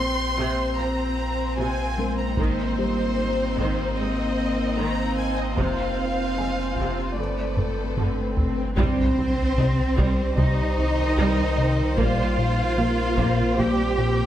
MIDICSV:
0, 0, Header, 1, 14, 480
1, 0, Start_track
1, 0, Key_signature, -3, "minor"
1, 0, Tempo, 800000
1, 1426, Time_signature, 4, 2, 24, 8
1, 8556, End_track
2, 0, Start_track
2, 0, Title_t, "Violin section"
2, 0, Program_c, 0, 48
2, 0, Note_on_c, 0, 84, 100
2, 467, Note_off_c, 0, 84, 0
2, 468, Note_on_c, 0, 82, 71
2, 947, Note_off_c, 0, 82, 0
2, 947, Note_on_c, 0, 80, 79
2, 1300, Note_off_c, 0, 80, 0
2, 1310, Note_on_c, 0, 82, 63
2, 1423, Note_on_c, 0, 72, 84
2, 1426, Note_off_c, 0, 82, 0
2, 2385, Note_off_c, 0, 72, 0
2, 2388, Note_on_c, 0, 75, 69
2, 2859, Note_on_c, 0, 82, 73
2, 2867, Note_off_c, 0, 75, 0
2, 3102, Note_on_c, 0, 80, 72
2, 3103, Note_off_c, 0, 82, 0
2, 3222, Note_off_c, 0, 80, 0
2, 3229, Note_on_c, 0, 75, 59
2, 3340, Note_on_c, 0, 77, 78
2, 3348, Note_off_c, 0, 75, 0
2, 4300, Note_on_c, 0, 74, 52
2, 4303, Note_off_c, 0, 77, 0
2, 4784, Note_off_c, 0, 74, 0
2, 5264, Note_on_c, 0, 72, 87
2, 6201, Note_off_c, 0, 72, 0
2, 6230, Note_on_c, 0, 75, 77
2, 7188, Note_off_c, 0, 75, 0
2, 7190, Note_on_c, 0, 77, 85
2, 8129, Note_off_c, 0, 77, 0
2, 8150, Note_on_c, 0, 79, 61
2, 8556, Note_off_c, 0, 79, 0
2, 8556, End_track
3, 0, Start_track
3, 0, Title_t, "Violin section"
3, 0, Program_c, 1, 48
3, 0, Note_on_c, 1, 60, 54
3, 0, Note_on_c, 1, 72, 49
3, 1401, Note_off_c, 1, 60, 0
3, 1404, Note_off_c, 1, 72, 0
3, 1426, Note_on_c, 1, 72, 51
3, 1430, Note_on_c, 1, 63, 55
3, 3324, Note_off_c, 1, 63, 0
3, 3342, Note_on_c, 1, 65, 47
3, 4282, Note_off_c, 1, 72, 0
3, 4285, Note_off_c, 1, 65, 0
3, 4301, Note_on_c, 1, 69, 45
3, 4305, Note_on_c, 1, 71, 46
3, 5129, Note_off_c, 1, 71, 0
3, 5144, Note_off_c, 1, 69, 0
3, 5269, Note_on_c, 1, 72, 67
3, 8556, Note_off_c, 1, 72, 0
3, 8556, End_track
4, 0, Start_track
4, 0, Title_t, "Felt piano"
4, 0, Program_c, 2, 0
4, 0, Control_c, 2, 64, 127
4, 0, Note_on_c, 2, 67, 53
4, 443, Note_off_c, 2, 67, 0
4, 1186, Note_on_c, 2, 56, 36
4, 1192, Note_on_c, 2, 70, 49
4, 1438, Control_c, 2, 64, 0
4, 1534, Control_c, 2, 64, 127
4, 1670, Note_on_c, 2, 55, 37
4, 1670, Note_on_c, 2, 67, 45
4, 2602, Note_off_c, 2, 56, 0
4, 2605, Note_off_c, 2, 70, 0
4, 3084, Note_off_c, 2, 55, 0
4, 3084, Note_off_c, 2, 67, 0
4, 3358, Control_c, 2, 64, 0
4, 3445, Control_c, 2, 64, 127
4, 3828, Note_on_c, 2, 80, 51
4, 4318, Control_c, 2, 64, 0
4, 4411, Control_c, 2, 64, 127
4, 5243, Note_off_c, 2, 80, 0
4, 5277, Control_c, 2, 64, 0
4, 5393, Control_c, 2, 64, 127
4, 5994, Note_on_c, 2, 72, 48
4, 7185, Note_on_c, 2, 70, 52
4, 7198, Control_c, 2, 64, 0
4, 7311, Control_c, 2, 64, 127
4, 7406, Note_off_c, 2, 72, 0
4, 8556, Note_off_c, 2, 70, 0
4, 8556, End_track
5, 0, Start_track
5, 0, Title_t, "Synth drone"
5, 0, Program_c, 3, 95
5, 0, Note_on_c, 3, 58, 61
5, 0, Note_on_c, 3, 60, 57
5, 0, Note_on_c, 3, 65, 62
5, 0, Note_on_c, 3, 72, 60
5, 1403, Note_off_c, 3, 72, 0
5, 1404, Note_off_c, 3, 60, 0
5, 1427, Note_off_c, 3, 65, 0
5, 1434, Note_on_c, 3, 60, 61
5, 1434, Note_on_c, 3, 63, 54
5, 1437, Note_on_c, 3, 72, 60
5, 3347, Note_off_c, 3, 58, 0
5, 3349, Note_on_c, 3, 56, 55
5, 3350, Note_off_c, 3, 63, 0
5, 3350, Note_on_c, 3, 65, 60
5, 4286, Note_off_c, 3, 60, 0
5, 4288, Note_off_c, 3, 72, 0
5, 4305, Note_on_c, 3, 71, 62
5, 4307, Note_on_c, 3, 57, 69
5, 4307, Note_on_c, 3, 62, 67
5, 4308, Note_off_c, 3, 56, 0
5, 4308, Note_off_c, 3, 65, 0
5, 4310, Note_on_c, 3, 55, 60
5, 5263, Note_off_c, 3, 55, 0
5, 5266, Note_off_c, 3, 71, 0
5, 5267, Note_off_c, 3, 57, 0
5, 5267, Note_off_c, 3, 62, 0
5, 5269, Note_on_c, 3, 67, 72
5, 5270, Note_on_c, 3, 55, 76
5, 5270, Note_on_c, 3, 63, 75
5, 5270, Note_on_c, 3, 72, 74
5, 7164, Note_off_c, 3, 55, 0
5, 7164, Note_off_c, 3, 63, 0
5, 7164, Note_off_c, 3, 67, 0
5, 7185, Note_on_c, 3, 58, 78
5, 7185, Note_on_c, 3, 65, 77
5, 7187, Note_on_c, 3, 60, 67
5, 8556, Note_off_c, 3, 58, 0
5, 8556, Note_off_c, 3, 60, 0
5, 8556, Note_off_c, 3, 65, 0
5, 8556, Note_off_c, 3, 72, 0
5, 8556, End_track
6, 0, Start_track
6, 0, Title_t, "French horn section"
6, 0, Program_c, 4, 60
6, 6231, Note_on_c, 4, 55, 63
6, 6452, Note_off_c, 4, 55, 0
6, 6476, Note_on_c, 4, 51, 80
6, 7191, Note_off_c, 4, 51, 0
6, 7191, Note_on_c, 4, 55, 68
6, 7424, Note_off_c, 4, 55, 0
6, 7433, Note_on_c, 4, 53, 54
6, 7670, Note_off_c, 4, 53, 0
6, 7672, Note_on_c, 4, 58, 70
6, 8143, Note_on_c, 4, 55, 68
6, 8149, Note_off_c, 4, 58, 0
6, 8385, Note_off_c, 4, 55, 0
6, 8385, Note_on_c, 4, 53, 59
6, 8556, Note_off_c, 4, 53, 0
6, 8556, End_track
7, 0, Start_track
7, 0, Title_t, "Viola section"
7, 0, Program_c, 5, 48
7, 0, Note_on_c, 5, 60, 54
7, 226, Note_on_c, 5, 48, 66
7, 449, Note_off_c, 5, 48, 0
7, 467, Note_on_c, 5, 53, 46
7, 515, Note_off_c, 5, 53, 0
7, 948, Note_on_c, 5, 48, 53
7, 1170, Note_off_c, 5, 48, 0
7, 1405, Note_off_c, 5, 60, 0
7, 1429, Note_on_c, 5, 51, 58
7, 1431, Note_on_c, 5, 60, 55
7, 1651, Note_off_c, 5, 51, 0
7, 1911, Note_on_c, 5, 58, 44
7, 1959, Note_off_c, 5, 58, 0
7, 2149, Note_on_c, 5, 51, 55
7, 2371, Note_off_c, 5, 51, 0
7, 2390, Note_on_c, 5, 56, 44
7, 2438, Note_off_c, 5, 56, 0
7, 2865, Note_on_c, 5, 51, 60
7, 3089, Note_off_c, 5, 51, 0
7, 3345, Note_on_c, 5, 48, 59
7, 3569, Note_off_c, 5, 48, 0
7, 3827, Note_on_c, 5, 56, 39
7, 3875, Note_off_c, 5, 56, 0
7, 4066, Note_on_c, 5, 48, 46
7, 4285, Note_off_c, 5, 60, 0
7, 4290, Note_off_c, 5, 48, 0
7, 4306, Note_on_c, 5, 50, 39
7, 4306, Note_on_c, 5, 57, 45
7, 4354, Note_off_c, 5, 50, 0
7, 4784, Note_on_c, 5, 50, 47
7, 5008, Note_off_c, 5, 50, 0
7, 5129, Note_off_c, 5, 57, 0
7, 5265, Note_on_c, 5, 55, 75
7, 5266, Note_off_c, 5, 55, 0
7, 5266, Note_on_c, 5, 55, 76
7, 5490, Note_off_c, 5, 55, 0
7, 5749, Note_on_c, 5, 55, 46
7, 5749, Note_on_c, 5, 63, 51
7, 5797, Note_off_c, 5, 55, 0
7, 5797, Note_off_c, 5, 63, 0
7, 5985, Note_on_c, 5, 55, 72
7, 6209, Note_off_c, 5, 55, 0
7, 6223, Note_on_c, 5, 60, 48
7, 6224, Note_on_c, 5, 55, 52
7, 6271, Note_off_c, 5, 60, 0
7, 6272, Note_off_c, 5, 55, 0
7, 6706, Note_on_c, 5, 55, 67
7, 6708, Note_off_c, 5, 55, 0
7, 6708, Note_on_c, 5, 55, 73
7, 6931, Note_off_c, 5, 55, 0
7, 7185, Note_on_c, 5, 58, 81
7, 7186, Note_off_c, 5, 58, 0
7, 7186, Note_on_c, 5, 58, 69
7, 7410, Note_off_c, 5, 58, 0
7, 7668, Note_on_c, 5, 65, 51
7, 7669, Note_on_c, 5, 58, 42
7, 7716, Note_off_c, 5, 65, 0
7, 7717, Note_off_c, 5, 58, 0
7, 7907, Note_on_c, 5, 58, 71
7, 8130, Note_off_c, 5, 58, 0
7, 8150, Note_on_c, 5, 58, 52
7, 8153, Note_on_c, 5, 60, 47
7, 8198, Note_off_c, 5, 58, 0
7, 8201, Note_off_c, 5, 60, 0
7, 8556, End_track
8, 0, Start_track
8, 0, Title_t, "Analog synth bass"
8, 0, Program_c, 6, 38
8, 5272, Note_on_c, 6, 36, 94
8, 5414, Note_off_c, 6, 36, 0
8, 5509, Note_on_c, 6, 36, 69
8, 5652, Note_off_c, 6, 36, 0
8, 5747, Note_on_c, 6, 48, 69
8, 5891, Note_off_c, 6, 48, 0
8, 5989, Note_on_c, 6, 36, 89
8, 6132, Note_off_c, 6, 36, 0
8, 6227, Note_on_c, 6, 48, 68
8, 6371, Note_off_c, 6, 48, 0
8, 6472, Note_on_c, 6, 36, 67
8, 6614, Note_off_c, 6, 36, 0
8, 6709, Note_on_c, 6, 36, 92
8, 6852, Note_off_c, 6, 36, 0
8, 6949, Note_on_c, 6, 48, 66
8, 7092, Note_off_c, 6, 48, 0
8, 7190, Note_on_c, 6, 46, 102
8, 7333, Note_off_c, 6, 46, 0
8, 7430, Note_on_c, 6, 46, 63
8, 7573, Note_off_c, 6, 46, 0
8, 7670, Note_on_c, 6, 58, 70
8, 7813, Note_off_c, 6, 58, 0
8, 7913, Note_on_c, 6, 46, 92
8, 8055, Note_off_c, 6, 46, 0
8, 8152, Note_on_c, 6, 58, 59
8, 8295, Note_off_c, 6, 58, 0
8, 8391, Note_on_c, 6, 46, 62
8, 8533, Note_off_c, 6, 46, 0
8, 8556, End_track
9, 0, Start_track
9, 0, Title_t, "Cello section"
9, 0, Program_c, 7, 48
9, 229, Note_on_c, 7, 46, 60
9, 277, Note_off_c, 7, 46, 0
9, 466, Note_on_c, 7, 46, 46
9, 514, Note_off_c, 7, 46, 0
9, 943, Note_on_c, 7, 46, 65
9, 991, Note_off_c, 7, 46, 0
9, 1426, Note_on_c, 7, 44, 70
9, 1474, Note_off_c, 7, 44, 0
9, 1903, Note_on_c, 7, 44, 42
9, 1951, Note_off_c, 7, 44, 0
9, 2147, Note_on_c, 7, 44, 61
9, 2195, Note_off_c, 7, 44, 0
9, 2387, Note_on_c, 7, 44, 40
9, 2435, Note_off_c, 7, 44, 0
9, 2868, Note_on_c, 7, 44, 56
9, 2916, Note_off_c, 7, 44, 0
9, 3345, Note_on_c, 7, 41, 59
9, 3393, Note_off_c, 7, 41, 0
9, 3827, Note_on_c, 7, 41, 36
9, 3875, Note_off_c, 7, 41, 0
9, 4065, Note_on_c, 7, 41, 56
9, 4113, Note_off_c, 7, 41, 0
9, 4304, Note_on_c, 7, 43, 35
9, 4352, Note_off_c, 7, 43, 0
9, 4787, Note_on_c, 7, 43, 55
9, 4835, Note_off_c, 7, 43, 0
9, 5269, Note_on_c, 7, 60, 89
9, 6204, Note_off_c, 7, 60, 0
9, 6232, Note_on_c, 7, 63, 91
9, 7189, Note_off_c, 7, 63, 0
9, 7191, Note_on_c, 7, 65, 91
9, 8129, Note_off_c, 7, 65, 0
9, 8147, Note_on_c, 7, 67, 90
9, 8556, Note_off_c, 7, 67, 0
9, 8556, End_track
10, 0, Start_track
10, 0, Title_t, "Double bass section"
10, 0, Program_c, 8, 48
10, 5269, Note_on_c, 8, 36, 66
10, 5317, Note_off_c, 8, 36, 0
10, 5751, Note_on_c, 8, 36, 51
10, 5799, Note_off_c, 8, 36, 0
10, 5990, Note_on_c, 8, 36, 68
10, 6038, Note_off_c, 8, 36, 0
10, 6229, Note_on_c, 8, 36, 55
10, 6277, Note_off_c, 8, 36, 0
10, 6711, Note_on_c, 8, 36, 75
10, 6759, Note_off_c, 8, 36, 0
10, 7190, Note_on_c, 8, 34, 65
10, 7238, Note_off_c, 8, 34, 0
10, 7670, Note_on_c, 8, 34, 50
10, 7718, Note_off_c, 8, 34, 0
10, 7908, Note_on_c, 8, 34, 72
10, 7956, Note_off_c, 8, 34, 0
10, 8149, Note_on_c, 8, 34, 57
10, 8197, Note_off_c, 8, 34, 0
10, 8556, End_track
11, 0, Start_track
11, 0, Title_t, "Sub bass"
11, 0, Program_c, 10, 38
11, 0, Note_on_c, 10, 34, 58
11, 1432, Note_on_c, 10, 32, 58
11, 1441, Note_off_c, 10, 34, 0
11, 3348, Note_on_c, 10, 29, 57
11, 3357, Note_off_c, 10, 32, 0
11, 4305, Note_on_c, 10, 31, 59
11, 4314, Note_off_c, 10, 29, 0
11, 5263, Note_off_c, 10, 31, 0
11, 5267, Note_on_c, 10, 36, 76
11, 7191, Note_on_c, 10, 34, 62
11, 7200, Note_off_c, 10, 36, 0
11, 8556, Note_off_c, 10, 34, 0
11, 8556, End_track
12, 0, Start_track
12, 0, Title_t, "Impact"
12, 0, Program_c, 11, 103
12, 5268, Note_on_c, 11, 60, 70
12, 7187, Note_off_c, 11, 60, 0
12, 8556, End_track
13, 0, Start_track
13, 0, Title_t, "Swell"
13, 0, Program_c, 12, 103
13, 3346, Note_on_c, 12, 60, 60
13, 5266, Note_off_c, 12, 60, 0
13, 8556, End_track
14, 0, Start_track
14, 0, Title_t, "Taiko and cinematic ensemble drums"
14, 1424, Note_on_c, 9, 41, 81
14, 1484, Note_off_c, 9, 41, 0
14, 2145, Note_on_c, 9, 41, 68
14, 2205, Note_off_c, 9, 41, 0
14, 3343, Note_on_c, 9, 41, 88
14, 3403, Note_off_c, 9, 41, 0
14, 4063, Note_on_c, 9, 41, 69
14, 4123, Note_off_c, 9, 41, 0
14, 4541, Note_on_c, 9, 45, 60
14, 4601, Note_off_c, 9, 45, 0
14, 4783, Note_on_c, 9, 45, 74
14, 4843, Note_off_c, 9, 45, 0
14, 5022, Note_on_c, 9, 43, 75
14, 5082, Note_off_c, 9, 43, 0
14, 5264, Note_on_c, 9, 41, 91
14, 5324, Note_off_c, 9, 41, 0
14, 5986, Note_on_c, 9, 41, 82
14, 6046, Note_off_c, 9, 41, 0
14, 6226, Note_on_c, 9, 43, 63
14, 6286, Note_off_c, 9, 43, 0
14, 7188, Note_on_c, 9, 41, 100
14, 7248, Note_off_c, 9, 41, 0
14, 7907, Note_on_c, 9, 41, 81
14, 7967, Note_off_c, 9, 41, 0
14, 8148, Note_on_c, 9, 43, 59
14, 8208, Note_off_c, 9, 43, 0
14, 8556, End_track
0, 0, End_of_file